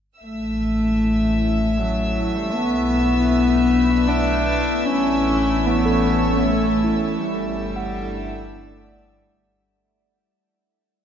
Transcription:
0.18 2.50 A1 medium
0.18 2.54 E3 medium
0.18 9.64 A3 medium
0.18 9.64 E4 medium
0.18 9.56 E5 medium
0.18 9.56 E6 medium
0.24 1.80 A3 medium
0.30 2.53 A3 medium
0.44 2.55 C#4 medium
0.50 3.48 A4 medium
1.23 2.53 C#5 medium
1.79 2.37 F#3 medium
2.35 2.56 G3 medium
2.51 4.83 B1 medium
2.51 4.86 F#3 medium
2.51 4.10 B3 loud
2.61 5.81 B3 medium
2.75 5.81 B4 medium
2.81 4.88 D4 medium
3.44 4.87 D5 medium
4.08 4.87 D4 medium
4.85 7.17 A1 medium
4.85 7.22 E3 medium
4.85 5.67 C#4 loud
5.09 7.22 C#4 medium
5.15 9.56 A3 medium
5.44 7.22 C#5 medium
5.55 9.56 A4 medium
5.66 6.36 B3 medium
5.85 8.63 A4 medium
6.36 7.20 A3 medium
6.36 6.39 B3 medium
6.84 9.62 E4 soft
7.18 9.51 G1 medium
7.18 9.15 G3 medium
7.25 9.57 G3 medium
7.68 9.55 D4 medium
7.76 10.53 F#5 medium
8.28 9.56 D5 medium

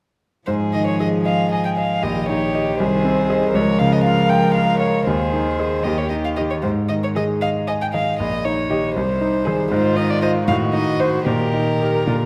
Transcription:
0.47 1.99 G#2 soft
0.47 2.04 F3 soft
0.47 1.22 G#4 soft
0.47 0.55 C5 soft
0.73 1.15 D#3 soft
0.73 0.86 D#5 soft
0.87 1.00 C#5 soft
1.00 1.41 G#4 soft
1.00 1.08 D#5 soft
1.25 2.04 G#4 soft
1.25 1.67 D#5 soft
1.25 1.51 F5 soft
1.51 1.64 D#5 soft
1.51 1.93 G#5 soft
1.65 1.70 G5 soft
1.77 2.03 D#5 soft
1.77 2.04 F5 soft
2.02 2.76 A#1 soft
2.02 2.78 D#3 soft
2.02 2.80 G4 soft
2.02 2.28 D#5 medium
2.29 2.69 D#4 soft
2.29 2.78 C#5 medium
2.55 2.77 G4 soft
2.55 2.77 D#5 soft
2.79 3.52 C2 soft
2.79 3.53 D#3 soft
2.79 3.54 G#4 soft
2.79 3.57 C5 medium
3.05 3.45 C4 soft
3.30 3.52 G#4 soft
3.30 3.52 D#5 soft
3.54 5.03 C#2 soft
3.54 5.03 F3 soft
3.54 5.08 A#4 soft
3.54 3.81 C#5 medium
3.79 4.20 C#3 soft
3.79 3.94 F5 medium
3.93 4.04 D#5 medium
4.04 4.45 F4 soft
4.04 4.31 F5 medium
4.29 4.70 F5 soft
4.29 4.54 G5 medium
4.55 4.96 A#4 soft
4.55 4.80 F5 medium
4.80 5.06 C#5 medium
4.80 5.06 F5 soft
5.07 5.82 D#2 soft
5.07 5.83 D#3 soft
5.07 5.86 G#4 soft
5.07 5.85 C5 medium
5.33 5.74 D#4 soft
5.59 5.82 G#4 soft
5.59 5.82 D#5 soft
5.84 6.61 D#2 soft
5.84 6.41 D#3 soft
5.84 6.42 G4 soft
5.84 6.00 D#5 soft
5.98 6.09 C#5 soft
6.10 6.52 D#4 soft
6.10 6.15 D#5 soft
6.25 6.30 F5 soft
6.36 6.61 G4 soft
6.36 6.42 D#5 soft
6.36 6.61 D#5 soft
6.50 6.56 C#5 soft
6.62 8.15 G#2 soft
6.62 6.70 C5 soft
6.89 7.32 D#3 soft
6.89 6.94 D#5 soft
7.04 7.09 C#5 soft
7.16 7.35 D#3 soft
7.16 7.35 G#4 soft
7.16 7.58 G#4 soft
7.16 7.24 D#5 soft
7.41 7.83 D#5 soft
7.41 7.49 F5 soft
7.68 7.73 D#5 soft
7.68 8.09 G#5 soft
7.82 7.87 G5 soft
7.94 8.13 D#3 soft
7.94 8.13 G#4 soft
7.94 8.19 D#5 soft
7.94 8.19 F5 soft
8.20 8.93 A#1 soft
8.20 8.46 D#5 medium
8.45 8.85 D#4 soft
8.45 8.95 C#5 medium
8.70 8.89 D#3 soft
8.70 8.89 G4 soft
8.70 8.93 G4 soft
8.70 8.93 D#5 soft
8.96 9.69 C2 soft
8.96 9.70 C5 medium
9.21 9.61 D#4 soft
9.46 9.65 D#3 soft
9.46 9.65 G#4 soft
9.46 9.69 G#4 soft
9.46 9.69 C5 soft
9.72 10.45 G#2 soft
9.72 10.44 D#3 soft
9.72 10.44 F4 soft
9.72 9.98 C5 medium
9.96 10.37 D#4 soft
9.96 10.12 D#5 medium
10.10 10.21 D5 medium
10.22 10.45 F4 soft
10.22 10.45 C5 soft
10.22 10.30 D#5 medium
10.48 11.24 A2 soft
10.48 11.25 D#3 soft
10.48 11.25 F#4 soft
10.48 10.56 F5 medium
10.73 11.16 D#4 soft
10.73 11.02 D#5 medium
11.00 11.24 F#4 soft
11.00 11.28 C5 medium
11.00 11.24 C5 soft
11.26 12.05 A#2 soft
11.26 12.08 D#3 soft
11.26 12.05 G4 soft
11.26 12.26 A#4 medium
11.54 11.97 D#4 soft
11.81 12.05 G4 soft
11.81 12.05 A#4 soft
12.06 12.26 A#2 soft
12.06 12.26 D3 soft
12.06 12.15 F4 soft

